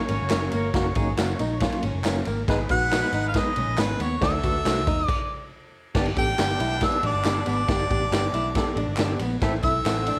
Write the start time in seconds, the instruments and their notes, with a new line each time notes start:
Already playing: horn section A#3 F#4 C#5, tine electric piano A#4
0.08 picked electric bass G#1, hollow-body jazz guitar C#4, ride, tambourine
0.21 picked electric bass F#1
0.30 picked electric bass F#1, tine electric piano F#3 A#3 C#4 A#4, hollow-body jazz guitar C#4, snare, clap, ride, tambourine
0.52 picked electric bass G1, hollow-body jazz guitar A#3, ride, tambourine
0.73 picked electric bass F#1, tine electric piano F#3 A#3 C#4 A#4, hollow-body jazz guitar F#4, kick, snare, ride, tambourine
0.95 picked electric bass G#1, tine electric piano F#3 A#3 C#4 D#4, hollow-body jazz guitar G#4, kick, ride, tambourine
1.17 picked electric bass F#1, tine electric piano F#3 A#3 C#4 A#4, hollow-body jazz guitar F#4, snare, clap, ride, tambourine
1.39 picked electric bass A#1, hollow-body jazz guitar D#4, ride, tambourine
1.60 tine electric piano F#3 A#3 C#4 F4, kick, snare, ride, tambourine
1.72 ride
1.83 picked electric bass G#1, hollow-body jazz guitar C#4, ride, tambourine
1.93 picked electric bass F#1
2.04 picked electric bass F#1, tine electric piano F#3 A#3 C#4 A#4, hollow-body jazz guitar C#4, snare, clap, ride, tambourine
2.17 snare
2.25 picked electric bass G#1, hollow-body jazz guitar A#3, ride, tambourine
2.48 picked electric bass G#1, horn section G#3 D#4 B4, tine electric piano G#3 B3 D#4 B4, hollow-body jazz guitar G#4, kick, snare, ride, tambourine
2.69 picked electric bass A#1, tine electric piano G#3 B3 D#4 B4, hollow-body jazz guitar F#4, harmonica F#5, kick, ride, tambourine
2.91 tine electric piano G#3 B3 D#4 B4, hollow-body jazz guitar F#4, snare, clap, ride, tambourine
3.13 picked electric bass G#1, hollow-body jazz guitar D#4, ride, tambourine
3.28 harmonica F5
3.34 tine electric piano G#3 B3 D#4 B4, harmonica D#5, kick, snare, ride, tambourine
3.56 picked electric bass B1, hollow-body jazz guitar C#4, ride, tambourine
3.67 picked electric bass A#1
3.78 picked electric bass G#1, tine electric piano G#3 B3 D#4 B4, hollow-body jazz guitar C#4, harmonica B4, snare, clap, ride, tambourine
3.99 picked electric bass D#2, hollow-body jazz guitar B3, harmonica C#5, ride, tambourine
4.21 picked electric bass D2, horn section F#3 D4 A4, tine electric piano A3 D4 F#4 C5, hollow-body jazz guitar D4, harmonica E5, kick, snare, ride
4.43 picked electric bass D2, tine electric piano A3 D4 F#4 B4, hollow-body jazz guitar F#4, kick, ride, tambourine
4.64 picked electric bass C2, tine electric piano A3 D4 F#4 C5, hollow-body jazz guitar F#4, snare, clap, ride, tambourine
4.87 picked electric bass E2, hollow-body jazz guitar D#4, kick, ride, tambourine
5.08 harmonica D5, kick, crash
5.95 picked electric bass G1, horn section B2 G3 D4, tine electric piano B3 D4 G4 D5, hollow-body jazz guitar G4, kick, snare, crash
6.06 ride
6.16 picked electric bass A1, tine electric piano B3 D4 G4 A4, hollow-body jazz guitar G4, harmonica G5, kick, ride, tambourine
6.38 picked electric bass G1, tine electric piano B3 D4 G4 D5, hollow-body jazz guitar G4, snare, clap, ride, tambourine
6.60 picked electric bass B1, hollow-body jazz guitar E4, ride, tambourine
6.81 tine electric piano B3 D4 G4 D5, harmonica E5, kick, snare, ride, tambourine
6.92 ride
7.03 picked electric bass A1, hollow-body jazz guitar D4, harmonica D5, ride
7.14 picked electric bass G1
7.24 picked electric bass G1, tine electric piano B3 D4 G4 D5, hollow-body jazz guitar D4, snare, clap, ride, tambourine
7.46 picked electric bass G#1, hollow-body jazz guitar B3, harmonica D5, ride, tambourine
7.68 picked electric bass G1, tine electric piano B3 D4 G4 D5, hollow-body jazz guitar G4, kick, snare, ride, tambourine
7.80 ride
7.90 picked electric bass A1, tine electric piano B3 D4 G4 D5, hollow-body jazz guitar G4, kick, ride, tambourine
8.11 picked electric bass G1, tine electric piano B3 D4 G4 D5, hollow-body jazz guitar G4, snare, clap, ride, tambourine
8.33 picked electric bass B1, hollow-body jazz guitar E4, ride, tambourine
8.55 tine electric piano B3 D4 G4 A4, kick, snare, ride, tambourine
8.76 picked electric bass A1, hollow-body jazz guitar D4, ride
8.87 picked electric bass G1
8.97 picked electric bass G1, tine electric piano B3 D4 G4 D5, hollow-body jazz guitar D4, snare, clap, ride, tambourine
9.19 picked electric bass A#1, hollow-body jazz guitar B3, ride, tambourine
9.40 picked electric bass A1, horn section E3 C4 A4, hollow-body jazz guitar A3, tine electric piano C4 E4 A4 E5, kick, snare, ride, tambourine
9.63 picked electric bass B1, tine electric piano C4 E4 A4 E5, hollow-body jazz guitar E4, harmonica E5, kick, ride, tambourine
9.85 picked electric bass A1, tine electric piano C4 E4 A4 F#5, hollow-body jazz guitar E4, snare, clap, ride, tambourine
10.06 hollow-body jazz guitar D4, ride, tambourine